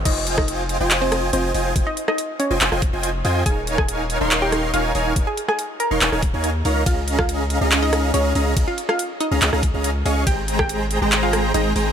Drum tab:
CC |x---------------|----------------|----------------|----------------|
RD |----------------|----------------|----------------|----------------|
HH |x-x-x-x-x-x-x-o-|x-x-x-x-x-x-x-o-|x-x-x-x-x-x-x-o-|x-x-x-x-x-x-x-o-|
CP |--------x-------|--------x-------|--------x-------|--------x-------|
SD |---r------r-----|---r-----r------|---r------r-----|---r-----r------|
BD |o--o------------|o---------o-----|o--o------------|o---------o-----|

CC |----------------|----------------|----------------|
RD |x-------x-------|x-------x-------|x-------x-------|
HH |x-x-x-x-x-x-x-o-|x-x-x-x-x-x-x-o-|x-x-x-x-x-x-x-o-|
CP |--------x-------|--------x-------|--------x-------|
SD |---r------r-----|---r-----r------|---r------r-----|
BD |o--o------------|o---------o-----|o--o------------|